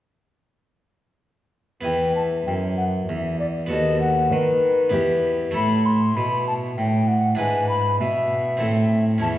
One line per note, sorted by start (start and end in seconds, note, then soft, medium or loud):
1.81 2.43 E2 medium
1.81 2.43 B3 soft
1.81 3.65 E4 soft
1.81 3.66 B4 soft
1.85 2.43 E2 soft
1.85 2.14 G5 medium
2.16 2.23 A5 medium
2.47 3.08 F#2 soft
2.47 3.06 F#2 soft
2.47 2.54 G5 medium
2.77 2.84 F#5 medium
3.09 3.69 E2 soft
3.09 3.67 E2 soft
3.09 3.39 E5 medium
3.39 3.46 D5 medium
3.66 4.87 B3 soft
3.66 4.88 F#4 soft
3.66 4.89 A4 soft
3.70 4.34 D#2 medium
3.70 4.28 D#2 soft
3.70 4.00 D#5 medium
4.01 4.33 F#5 medium
4.32 4.95 D#3 medium
4.32 4.90 D#3 soft
4.32 5.40 B4 medium
4.89 5.55 E2 soft
4.89 5.51 B3 soft
4.89 5.51 E4 soft
4.89 5.53 G4 soft
4.94 5.51 E2 soft
5.51 6.15 A2 medium
5.51 7.33 A3 soft
5.51 7.34 E4 soft
5.51 7.35 A4 soft
5.51 5.87 B5 medium
5.56 6.13 A2 soft
5.86 6.18 C6 medium
6.16 6.77 B2 medium
6.16 6.74 B2 soft
6.16 6.47 B5 medium
6.47 6.54 A5 medium
6.78 7.38 A2 medium
6.78 7.35 A2 soft
6.78 7.09 G5 medium
7.08 7.38 F#5 medium
7.35 8.01 G#2 medium
7.35 8.56 D4 soft
7.35 8.56 E4 medium
7.35 8.57 B4 soft
7.35 7.68 G#5 medium
7.40 7.97 G#2 medium
7.69 7.99 B5 medium
8.00 8.63 B2 medium
8.00 8.58 B2 medium
8.00 9.05 E5 medium
8.57 9.22 A2 medium
8.57 9.18 C4 medium
8.57 9.18 E4 soft
8.57 9.20 A4 medium
8.62 9.19 A2 medium
9.18 9.38 C#4 soft
9.18 9.38 E4 soft
9.18 9.38 C#5 soft
9.18 9.29 A5 medium
9.23 9.38 E2 medium